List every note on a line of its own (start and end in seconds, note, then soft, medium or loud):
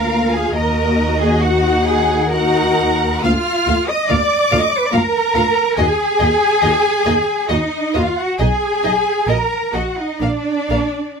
0.00 0.50 D2 medium
0.00 0.54 A#3 medium
0.00 0.54 F4 medium
0.00 0.33 A#4 medium
0.00 0.54 F5 medium
0.00 0.31 A#5 medium
0.32 0.55 G#4 medium
0.32 0.54 G#5 medium
0.54 3.20 D#2 medium
0.54 1.39 A#3 medium
0.54 2.29 F#4 medium
0.54 1.19 A#4 medium
0.54 1.40 D#5 medium
0.54 1.19 A#5 medium
1.19 1.42 G#4 medium
1.19 1.41 G#5 medium
1.41 2.29 D#4 medium
1.41 1.85 F#4 medium
1.41 1.85 F#5 medium
1.41 2.29 F#5 medium
1.84 2.29 G#4 medium
1.84 2.29 G#5 medium
2.30 3.22 D#4 medium
2.30 3.22 F#4 medium
2.30 3.24 A#4 medium
2.30 3.22 F#5 medium
2.30 3.24 A#5 medium
3.23 3.32 D2 medium
3.23 3.31 A#3 medium
3.23 3.31 F4 medium
3.23 3.87 F4 loud
3.23 3.31 F5 medium
3.23 3.88 F6 loud
3.66 3.75 D2 medium
3.66 3.74 A#3 medium
3.66 3.74 F4 medium
3.66 3.75 F5 medium
3.88 4.10 D#5 loud
3.88 4.09 D#6 medium
4.09 4.18 D2 medium
4.09 4.17 A#3 medium
4.09 4.17 F4 medium
4.09 4.60 D5 loud
4.09 4.17 F5 medium
4.09 4.93 D6 loud
4.51 4.59 D2 medium
4.51 4.59 A#3 medium
4.51 4.59 F4 medium
4.51 4.59 F5 medium
4.60 4.68 D#5 medium
4.69 4.77 D5 loud
4.77 4.85 B4 loud
4.85 4.94 D5 medium
4.92 5.02 D2 medium
4.92 5.00 A#3 medium
4.92 5.00 F4 medium
4.92 5.76 A#4 loud
4.92 5.01 F5 medium
4.92 5.78 A#5 loud
5.34 5.44 D2 medium
5.34 5.43 A#3 medium
5.34 5.42 F4 medium
5.34 5.43 F5 medium
5.77 5.86 D#2 medium
5.77 5.85 A#3 medium
5.77 5.85 F#4 medium
5.77 7.51 G#4 loud
5.77 5.85 D#5 medium
5.77 7.47 G#5 loud
6.19 6.28 D#2 medium
6.19 6.28 A#3 medium
6.19 6.28 F#4 medium
6.19 6.27 D#5 medium
6.62 6.70 D#2 medium
6.62 6.71 A#3 medium
6.62 6.71 F#4 medium
6.62 6.70 D#5 medium
7.05 7.14 D#2 medium
7.05 7.14 A#3 medium
7.05 7.14 F#4 medium
7.05 7.13 D#5 medium
7.49 7.58 D#2 medium
7.49 7.58 A#3 medium
7.49 7.96 D#4 medium
7.49 7.58 F#4 medium
7.49 7.57 D#5 medium
7.49 7.95 D#5 medium
7.93 8.03 D#2 medium
7.93 8.03 A#3 medium
7.93 8.18 F4 loud
7.93 8.03 F#4 medium
7.93 8.01 D#5 medium
7.93 8.18 F5 medium
8.17 8.41 F#4 medium
8.17 8.40 F#5 medium
8.39 8.47 B1 medium
8.39 8.48 D#4 medium
8.39 8.47 G#4 medium
8.39 9.27 G#4 loud
8.39 8.47 D#5 medium
8.39 9.27 G#5 loud
8.83 8.92 B1 medium
8.83 8.91 D#4 medium
8.83 8.92 G#4 medium
8.83 8.92 D#5 medium
9.27 9.36 A#1 medium
9.27 9.35 A#3 medium
9.27 9.35 F#4 medium
9.27 9.74 A#4 medium
9.27 9.36 D#5 medium
9.27 9.74 A#5 medium
9.72 9.82 A#1 medium
9.72 9.80 A#3 medium
9.72 9.80 F#4 medium
9.72 9.97 F#4 medium
9.72 9.82 D#5 medium
9.72 9.98 F#5 medium
9.97 10.21 D#4 medium
9.97 10.21 D#5 medium
10.20 10.29 A#1 medium
10.20 10.28 A#3 medium
10.20 11.20 D4 medium
10.20 10.28 A#4 medium
10.20 11.20 D5 medium
10.20 10.30 F5 medium
10.69 10.78 A#1 medium
10.69 10.78 A#3 medium
10.69 10.77 A#4 medium
10.69 10.78 F5 medium